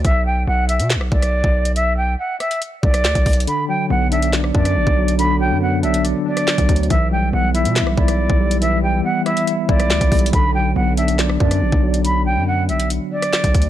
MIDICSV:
0, 0, Header, 1, 5, 480
1, 0, Start_track
1, 0, Key_signature, 2, "minor"
1, 0, Tempo, 428571
1, 52, Time_signature, 4, 2, 24, 8
1, 15337, End_track
2, 0, Start_track
2, 0, Title_t, "Flute"
2, 0, Program_c, 0, 73
2, 51, Note_on_c, 0, 76, 88
2, 277, Note_off_c, 0, 76, 0
2, 290, Note_on_c, 0, 79, 86
2, 517, Note_off_c, 0, 79, 0
2, 530, Note_on_c, 0, 78, 91
2, 757, Note_off_c, 0, 78, 0
2, 767, Note_on_c, 0, 76, 80
2, 995, Note_off_c, 0, 76, 0
2, 1248, Note_on_c, 0, 74, 89
2, 1927, Note_off_c, 0, 74, 0
2, 1970, Note_on_c, 0, 76, 94
2, 2197, Note_off_c, 0, 76, 0
2, 2209, Note_on_c, 0, 79, 83
2, 2436, Note_off_c, 0, 79, 0
2, 2450, Note_on_c, 0, 78, 86
2, 2677, Note_off_c, 0, 78, 0
2, 2688, Note_on_c, 0, 76, 82
2, 2916, Note_off_c, 0, 76, 0
2, 3167, Note_on_c, 0, 74, 85
2, 3846, Note_off_c, 0, 74, 0
2, 3896, Note_on_c, 0, 83, 80
2, 4120, Note_off_c, 0, 83, 0
2, 4128, Note_on_c, 0, 79, 94
2, 4356, Note_off_c, 0, 79, 0
2, 4370, Note_on_c, 0, 78, 86
2, 4597, Note_off_c, 0, 78, 0
2, 4611, Note_on_c, 0, 76, 85
2, 4837, Note_off_c, 0, 76, 0
2, 5092, Note_on_c, 0, 74, 83
2, 5769, Note_off_c, 0, 74, 0
2, 5810, Note_on_c, 0, 83, 92
2, 6037, Note_off_c, 0, 83, 0
2, 6053, Note_on_c, 0, 79, 90
2, 6279, Note_off_c, 0, 79, 0
2, 6294, Note_on_c, 0, 78, 89
2, 6519, Note_off_c, 0, 78, 0
2, 6531, Note_on_c, 0, 76, 79
2, 6758, Note_off_c, 0, 76, 0
2, 7015, Note_on_c, 0, 74, 86
2, 7690, Note_off_c, 0, 74, 0
2, 7732, Note_on_c, 0, 76, 89
2, 7958, Note_off_c, 0, 76, 0
2, 7974, Note_on_c, 0, 79, 90
2, 8199, Note_off_c, 0, 79, 0
2, 8210, Note_on_c, 0, 78, 91
2, 8437, Note_off_c, 0, 78, 0
2, 8449, Note_on_c, 0, 76, 77
2, 8676, Note_off_c, 0, 76, 0
2, 8931, Note_on_c, 0, 74, 86
2, 9608, Note_off_c, 0, 74, 0
2, 9651, Note_on_c, 0, 76, 92
2, 9877, Note_off_c, 0, 76, 0
2, 9889, Note_on_c, 0, 79, 86
2, 10116, Note_off_c, 0, 79, 0
2, 10131, Note_on_c, 0, 78, 85
2, 10357, Note_off_c, 0, 78, 0
2, 10370, Note_on_c, 0, 76, 82
2, 10597, Note_off_c, 0, 76, 0
2, 10848, Note_on_c, 0, 74, 91
2, 11527, Note_off_c, 0, 74, 0
2, 11577, Note_on_c, 0, 83, 82
2, 11800, Note_off_c, 0, 83, 0
2, 11808, Note_on_c, 0, 79, 96
2, 12036, Note_off_c, 0, 79, 0
2, 12049, Note_on_c, 0, 78, 88
2, 12276, Note_off_c, 0, 78, 0
2, 12289, Note_on_c, 0, 76, 84
2, 12516, Note_off_c, 0, 76, 0
2, 12771, Note_on_c, 0, 74, 81
2, 13448, Note_off_c, 0, 74, 0
2, 13490, Note_on_c, 0, 83, 89
2, 13717, Note_off_c, 0, 83, 0
2, 13731, Note_on_c, 0, 79, 90
2, 13957, Note_off_c, 0, 79, 0
2, 13973, Note_on_c, 0, 78, 88
2, 14198, Note_off_c, 0, 78, 0
2, 14210, Note_on_c, 0, 76, 78
2, 14437, Note_off_c, 0, 76, 0
2, 14694, Note_on_c, 0, 74, 87
2, 15337, Note_off_c, 0, 74, 0
2, 15337, End_track
3, 0, Start_track
3, 0, Title_t, "Tine electric piano"
3, 0, Program_c, 1, 4
3, 3890, Note_on_c, 1, 50, 95
3, 4077, Control_c, 1, 64, 127
3, 4131, Note_on_c, 1, 54, 81
3, 4370, Note_on_c, 1, 59, 77
3, 4614, Note_on_c, 1, 62, 99
3, 4854, Note_on_c, 1, 74, 82
3, 5077, Note_off_c, 1, 62, 0
3, 5090, Note_on_c, 1, 62, 80
3, 5091, Note_off_c, 1, 50, 0
3, 5331, Note_off_c, 1, 54, 0
3, 5570, Note_on_c, 1, 54, 76
3, 5571, Note_off_c, 1, 59, 0
3, 5814, Note_on_c, 1, 50, 94
3, 6035, Note_off_c, 1, 54, 0
3, 6049, Note_on_c, 1, 54, 75
3, 6053, Note_off_c, 1, 74, 0
3, 6291, Note_off_c, 1, 62, 0
3, 6291, Note_on_c, 1, 59, 68
3, 6531, Note_on_c, 1, 62, 99
3, 6770, Note_on_c, 1, 74, 90
3, 6998, Note_off_c, 1, 62, 0
3, 7011, Note_on_c, 1, 62, 69
3, 7013, Note_off_c, 1, 50, 0
3, 7250, Note_off_c, 1, 54, 0
3, 7491, Note_off_c, 1, 59, 0
3, 7492, Note_on_c, 1, 54, 77
3, 7731, Note_off_c, 1, 62, 0
3, 7731, Note_off_c, 1, 74, 0
3, 7732, Note_off_c, 1, 54, 0
3, 7733, Note_on_c, 1, 52, 86
3, 7746, Control_c, 1, 64, 0
3, 7943, Control_c, 1, 64, 127
3, 7968, Note_on_c, 1, 55, 77
3, 8209, Note_on_c, 1, 59, 76
3, 8450, Note_on_c, 1, 64, 98
3, 8687, Note_on_c, 1, 76, 93
3, 8922, Note_off_c, 1, 64, 0
3, 8932, Note_off_c, 1, 52, 0
3, 8935, Note_on_c, 1, 64, 81
3, 9170, Note_off_c, 1, 55, 0
3, 9410, Note_off_c, 1, 59, 0
3, 9413, Note_on_c, 1, 55, 78
3, 9651, Note_on_c, 1, 52, 94
3, 9879, Note_off_c, 1, 55, 0
3, 9889, Note_off_c, 1, 76, 0
3, 9893, Note_on_c, 1, 55, 74
3, 10131, Note_on_c, 1, 59, 76
3, 10133, Note_off_c, 1, 64, 0
3, 10374, Note_on_c, 1, 64, 94
3, 10608, Note_on_c, 1, 76, 90
3, 10836, Note_off_c, 1, 64, 0
3, 10849, Note_on_c, 1, 64, 88
3, 10851, Note_off_c, 1, 52, 0
3, 11092, Note_off_c, 1, 55, 0
3, 11330, Note_on_c, 1, 55, 77
3, 11331, Note_off_c, 1, 59, 0
3, 11569, Note_on_c, 1, 50, 96
3, 11570, Note_off_c, 1, 64, 0
3, 11570, Note_off_c, 1, 76, 0
3, 11571, Note_off_c, 1, 55, 0
3, 11588, Control_c, 1, 64, 0
3, 11793, Control_c, 1, 64, 127
3, 11811, Note_on_c, 1, 54, 79
3, 12050, Note_on_c, 1, 59, 76
3, 12293, Note_on_c, 1, 62, 97
3, 12533, Note_on_c, 1, 74, 81
3, 12757, Note_off_c, 1, 62, 0
3, 12770, Note_off_c, 1, 50, 0
3, 12770, Note_on_c, 1, 62, 78
3, 13011, Note_off_c, 1, 54, 0
3, 13249, Note_on_c, 1, 54, 72
3, 13251, Note_off_c, 1, 59, 0
3, 13490, Note_off_c, 1, 54, 0
3, 13491, Note_off_c, 1, 62, 0
3, 13493, Note_off_c, 1, 74, 0
3, 15337, End_track
4, 0, Start_track
4, 0, Title_t, "808-style bass"
4, 0, Program_c, 2, 38
4, 52, Note_on_c, 2, 35, 107
4, 513, Note_off_c, 2, 35, 0
4, 531, Note_on_c, 2, 35, 107
4, 891, Note_on_c, 2, 47, 102
4, 908, Note_off_c, 2, 35, 0
4, 1070, Note_on_c, 2, 35, 98
4, 1087, Note_off_c, 2, 47, 0
4, 1242, Note_off_c, 2, 35, 0
4, 1252, Note_on_c, 2, 35, 101
4, 1597, Note_off_c, 2, 35, 0
4, 1611, Note_on_c, 2, 35, 106
4, 2418, Note_off_c, 2, 35, 0
4, 3171, Note_on_c, 2, 35, 107
4, 3411, Note_on_c, 2, 38, 98
4, 3428, Note_off_c, 2, 35, 0
4, 3525, Note_off_c, 2, 38, 0
4, 3531, Note_on_c, 2, 35, 102
4, 3644, Note_off_c, 2, 35, 0
4, 3651, Note_on_c, 2, 35, 101
4, 3881, Note_off_c, 2, 35, 0
4, 4371, Note_on_c, 2, 35, 107
4, 5063, Note_off_c, 2, 35, 0
4, 5091, Note_on_c, 2, 42, 104
4, 5331, Note_on_c, 2, 33, 99
4, 5348, Note_off_c, 2, 42, 0
4, 5445, Note_off_c, 2, 33, 0
4, 5451, Note_on_c, 2, 35, 114
4, 6171, Note_on_c, 2, 42, 95
4, 6188, Note_off_c, 2, 35, 0
4, 6532, Note_on_c, 2, 35, 99
4, 6549, Note_off_c, 2, 42, 0
4, 6874, Note_off_c, 2, 35, 0
4, 7372, Note_on_c, 2, 35, 106
4, 7487, Note_off_c, 2, 35, 0
4, 7491, Note_on_c, 2, 38, 102
4, 7722, Note_off_c, 2, 38, 0
4, 7732, Note_on_c, 2, 35, 107
4, 8193, Note_off_c, 2, 35, 0
4, 8212, Note_on_c, 2, 35, 103
4, 8571, Note_on_c, 2, 47, 100
4, 8588, Note_off_c, 2, 35, 0
4, 8752, Note_on_c, 2, 35, 98
4, 8768, Note_off_c, 2, 47, 0
4, 8923, Note_off_c, 2, 35, 0
4, 8932, Note_on_c, 2, 35, 101
4, 9278, Note_off_c, 2, 35, 0
4, 9292, Note_on_c, 2, 35, 104
4, 10098, Note_off_c, 2, 35, 0
4, 10852, Note_on_c, 2, 35, 104
4, 11091, Note_on_c, 2, 38, 99
4, 11108, Note_off_c, 2, 35, 0
4, 11205, Note_off_c, 2, 38, 0
4, 11212, Note_on_c, 2, 35, 105
4, 11324, Note_off_c, 2, 35, 0
4, 11331, Note_on_c, 2, 35, 105
4, 11562, Note_off_c, 2, 35, 0
4, 11572, Note_on_c, 2, 35, 110
4, 12032, Note_off_c, 2, 35, 0
4, 12052, Note_on_c, 2, 35, 103
4, 12743, Note_off_c, 2, 35, 0
4, 12772, Note_on_c, 2, 42, 105
4, 13012, Note_on_c, 2, 33, 100
4, 13029, Note_off_c, 2, 42, 0
4, 13126, Note_off_c, 2, 33, 0
4, 13131, Note_on_c, 2, 35, 113
4, 13851, Note_on_c, 2, 42, 98
4, 13868, Note_off_c, 2, 35, 0
4, 14211, Note_on_c, 2, 35, 98
4, 14228, Note_off_c, 2, 42, 0
4, 14553, Note_off_c, 2, 35, 0
4, 15051, Note_on_c, 2, 35, 104
4, 15164, Note_off_c, 2, 35, 0
4, 15171, Note_on_c, 2, 38, 99
4, 15337, Note_off_c, 2, 38, 0
4, 15337, End_track
5, 0, Start_track
5, 0, Title_t, "Drums"
5, 51, Note_on_c, 9, 36, 114
5, 52, Note_on_c, 9, 42, 73
5, 163, Note_off_c, 9, 36, 0
5, 164, Note_off_c, 9, 42, 0
5, 772, Note_on_c, 9, 42, 76
5, 884, Note_off_c, 9, 42, 0
5, 891, Note_on_c, 9, 42, 85
5, 1003, Note_off_c, 9, 42, 0
5, 1010, Note_on_c, 9, 38, 126
5, 1011, Note_on_c, 9, 42, 82
5, 1015, Note_on_c, 9, 39, 100
5, 1122, Note_off_c, 9, 38, 0
5, 1123, Note_off_c, 9, 42, 0
5, 1127, Note_off_c, 9, 39, 0
5, 1131, Note_on_c, 9, 37, 92
5, 1243, Note_off_c, 9, 37, 0
5, 1251, Note_on_c, 9, 36, 106
5, 1363, Note_off_c, 9, 36, 0
5, 1372, Note_on_c, 9, 37, 65
5, 1372, Note_on_c, 9, 42, 79
5, 1484, Note_off_c, 9, 37, 0
5, 1484, Note_off_c, 9, 42, 0
5, 1611, Note_on_c, 9, 36, 88
5, 1723, Note_off_c, 9, 36, 0
5, 1851, Note_on_c, 9, 42, 82
5, 1963, Note_off_c, 9, 42, 0
5, 1971, Note_on_c, 9, 42, 72
5, 2083, Note_off_c, 9, 42, 0
5, 2691, Note_on_c, 9, 37, 68
5, 2691, Note_on_c, 9, 42, 62
5, 2803, Note_off_c, 9, 37, 0
5, 2803, Note_off_c, 9, 42, 0
5, 2811, Note_on_c, 9, 42, 65
5, 2923, Note_off_c, 9, 42, 0
5, 2931, Note_on_c, 9, 42, 82
5, 3043, Note_off_c, 9, 42, 0
5, 3172, Note_on_c, 9, 36, 108
5, 3284, Note_off_c, 9, 36, 0
5, 3291, Note_on_c, 9, 37, 94
5, 3291, Note_on_c, 9, 42, 81
5, 3403, Note_off_c, 9, 37, 0
5, 3403, Note_off_c, 9, 42, 0
5, 3411, Note_on_c, 9, 38, 115
5, 3416, Note_on_c, 9, 39, 94
5, 3523, Note_off_c, 9, 38, 0
5, 3528, Note_off_c, 9, 39, 0
5, 3531, Note_on_c, 9, 36, 91
5, 3531, Note_on_c, 9, 42, 79
5, 3643, Note_off_c, 9, 36, 0
5, 3643, Note_off_c, 9, 42, 0
5, 3651, Note_on_c, 9, 36, 98
5, 3651, Note_on_c, 9, 42, 51
5, 3651, Note_on_c, 9, 46, 65
5, 3731, Note_off_c, 9, 42, 0
5, 3731, Note_on_c, 9, 42, 69
5, 3763, Note_off_c, 9, 36, 0
5, 3763, Note_off_c, 9, 46, 0
5, 3811, Note_off_c, 9, 42, 0
5, 3811, Note_on_c, 9, 42, 85
5, 3892, Note_off_c, 9, 42, 0
5, 3892, Note_on_c, 9, 42, 74
5, 4004, Note_off_c, 9, 42, 0
5, 4612, Note_on_c, 9, 42, 74
5, 4724, Note_off_c, 9, 42, 0
5, 4732, Note_on_c, 9, 42, 82
5, 4844, Note_off_c, 9, 42, 0
5, 4851, Note_on_c, 9, 38, 118
5, 4852, Note_on_c, 9, 42, 82
5, 4856, Note_on_c, 9, 39, 95
5, 4963, Note_off_c, 9, 38, 0
5, 4964, Note_off_c, 9, 42, 0
5, 4968, Note_off_c, 9, 39, 0
5, 4971, Note_on_c, 9, 37, 91
5, 5083, Note_off_c, 9, 37, 0
5, 5092, Note_on_c, 9, 36, 105
5, 5204, Note_off_c, 9, 36, 0
5, 5211, Note_on_c, 9, 42, 81
5, 5212, Note_on_c, 9, 37, 67
5, 5323, Note_off_c, 9, 42, 0
5, 5324, Note_off_c, 9, 37, 0
5, 5451, Note_on_c, 9, 36, 92
5, 5563, Note_off_c, 9, 36, 0
5, 5692, Note_on_c, 9, 42, 82
5, 5804, Note_off_c, 9, 42, 0
5, 5812, Note_on_c, 9, 42, 73
5, 5924, Note_off_c, 9, 42, 0
5, 6532, Note_on_c, 9, 42, 46
5, 6644, Note_off_c, 9, 42, 0
5, 6652, Note_on_c, 9, 42, 76
5, 6764, Note_off_c, 9, 42, 0
5, 6772, Note_on_c, 9, 42, 83
5, 6884, Note_off_c, 9, 42, 0
5, 7132, Note_on_c, 9, 42, 77
5, 7133, Note_on_c, 9, 37, 92
5, 7244, Note_off_c, 9, 42, 0
5, 7245, Note_off_c, 9, 37, 0
5, 7253, Note_on_c, 9, 38, 111
5, 7257, Note_on_c, 9, 39, 90
5, 7365, Note_off_c, 9, 38, 0
5, 7369, Note_off_c, 9, 39, 0
5, 7372, Note_on_c, 9, 36, 91
5, 7373, Note_on_c, 9, 42, 83
5, 7484, Note_off_c, 9, 36, 0
5, 7485, Note_off_c, 9, 42, 0
5, 7491, Note_on_c, 9, 36, 96
5, 7493, Note_on_c, 9, 42, 85
5, 7573, Note_off_c, 9, 42, 0
5, 7573, Note_on_c, 9, 42, 68
5, 7603, Note_off_c, 9, 36, 0
5, 7653, Note_off_c, 9, 42, 0
5, 7653, Note_on_c, 9, 42, 51
5, 7732, Note_off_c, 9, 42, 0
5, 7732, Note_on_c, 9, 36, 115
5, 7732, Note_on_c, 9, 42, 74
5, 7844, Note_off_c, 9, 36, 0
5, 7844, Note_off_c, 9, 42, 0
5, 8452, Note_on_c, 9, 42, 72
5, 8564, Note_off_c, 9, 42, 0
5, 8572, Note_on_c, 9, 42, 82
5, 8684, Note_off_c, 9, 42, 0
5, 8691, Note_on_c, 9, 38, 126
5, 8692, Note_on_c, 9, 42, 80
5, 8696, Note_on_c, 9, 39, 99
5, 8803, Note_off_c, 9, 38, 0
5, 8804, Note_off_c, 9, 42, 0
5, 8808, Note_off_c, 9, 39, 0
5, 8812, Note_on_c, 9, 37, 89
5, 8924, Note_off_c, 9, 37, 0
5, 8932, Note_on_c, 9, 36, 105
5, 9044, Note_off_c, 9, 36, 0
5, 9052, Note_on_c, 9, 37, 67
5, 9052, Note_on_c, 9, 42, 82
5, 9164, Note_off_c, 9, 37, 0
5, 9164, Note_off_c, 9, 42, 0
5, 9291, Note_on_c, 9, 36, 92
5, 9403, Note_off_c, 9, 36, 0
5, 9532, Note_on_c, 9, 42, 79
5, 9644, Note_off_c, 9, 42, 0
5, 9652, Note_on_c, 9, 42, 75
5, 9764, Note_off_c, 9, 42, 0
5, 10372, Note_on_c, 9, 37, 70
5, 10372, Note_on_c, 9, 42, 63
5, 10484, Note_off_c, 9, 37, 0
5, 10484, Note_off_c, 9, 42, 0
5, 10492, Note_on_c, 9, 42, 64
5, 10604, Note_off_c, 9, 42, 0
5, 10612, Note_on_c, 9, 42, 81
5, 10724, Note_off_c, 9, 42, 0
5, 10852, Note_on_c, 9, 36, 103
5, 10964, Note_off_c, 9, 36, 0
5, 10972, Note_on_c, 9, 37, 95
5, 10972, Note_on_c, 9, 42, 77
5, 11084, Note_off_c, 9, 37, 0
5, 11084, Note_off_c, 9, 42, 0
5, 11092, Note_on_c, 9, 38, 115
5, 11097, Note_on_c, 9, 39, 90
5, 11204, Note_off_c, 9, 38, 0
5, 11209, Note_off_c, 9, 39, 0
5, 11211, Note_on_c, 9, 36, 92
5, 11212, Note_on_c, 9, 42, 79
5, 11323, Note_off_c, 9, 36, 0
5, 11324, Note_off_c, 9, 42, 0
5, 11331, Note_on_c, 9, 36, 97
5, 11332, Note_on_c, 9, 42, 53
5, 11332, Note_on_c, 9, 46, 65
5, 11412, Note_off_c, 9, 42, 0
5, 11412, Note_on_c, 9, 42, 71
5, 11443, Note_off_c, 9, 36, 0
5, 11444, Note_off_c, 9, 46, 0
5, 11492, Note_off_c, 9, 42, 0
5, 11492, Note_on_c, 9, 42, 87
5, 11572, Note_off_c, 9, 42, 0
5, 11572, Note_on_c, 9, 36, 114
5, 11572, Note_on_c, 9, 42, 74
5, 11684, Note_off_c, 9, 36, 0
5, 11684, Note_off_c, 9, 42, 0
5, 12291, Note_on_c, 9, 42, 75
5, 12403, Note_off_c, 9, 42, 0
5, 12411, Note_on_c, 9, 42, 81
5, 12523, Note_off_c, 9, 42, 0
5, 12531, Note_on_c, 9, 38, 123
5, 12531, Note_on_c, 9, 42, 81
5, 12536, Note_on_c, 9, 39, 99
5, 12643, Note_off_c, 9, 38, 0
5, 12643, Note_off_c, 9, 42, 0
5, 12648, Note_off_c, 9, 39, 0
5, 12651, Note_on_c, 9, 37, 95
5, 12763, Note_off_c, 9, 37, 0
5, 12771, Note_on_c, 9, 36, 106
5, 12883, Note_off_c, 9, 36, 0
5, 12891, Note_on_c, 9, 42, 78
5, 12892, Note_on_c, 9, 37, 66
5, 13003, Note_off_c, 9, 42, 0
5, 13004, Note_off_c, 9, 37, 0
5, 13131, Note_on_c, 9, 36, 94
5, 13243, Note_off_c, 9, 36, 0
5, 13371, Note_on_c, 9, 42, 81
5, 13483, Note_off_c, 9, 42, 0
5, 13491, Note_on_c, 9, 42, 76
5, 13603, Note_off_c, 9, 42, 0
5, 14212, Note_on_c, 9, 42, 46
5, 14324, Note_off_c, 9, 42, 0
5, 14331, Note_on_c, 9, 42, 80
5, 14443, Note_off_c, 9, 42, 0
5, 14451, Note_on_c, 9, 42, 82
5, 14563, Note_off_c, 9, 42, 0
5, 14811, Note_on_c, 9, 37, 93
5, 14811, Note_on_c, 9, 42, 81
5, 14923, Note_off_c, 9, 37, 0
5, 14923, Note_off_c, 9, 42, 0
5, 14932, Note_on_c, 9, 38, 117
5, 14936, Note_on_c, 9, 39, 93
5, 15044, Note_off_c, 9, 38, 0
5, 15048, Note_off_c, 9, 39, 0
5, 15051, Note_on_c, 9, 36, 89
5, 15051, Note_on_c, 9, 42, 83
5, 15163, Note_off_c, 9, 36, 0
5, 15163, Note_off_c, 9, 42, 0
5, 15171, Note_on_c, 9, 36, 98
5, 15171, Note_on_c, 9, 42, 85
5, 15251, Note_off_c, 9, 42, 0
5, 15251, Note_on_c, 9, 42, 69
5, 15283, Note_off_c, 9, 36, 0
5, 15337, Note_off_c, 9, 42, 0
5, 15337, End_track
0, 0, End_of_file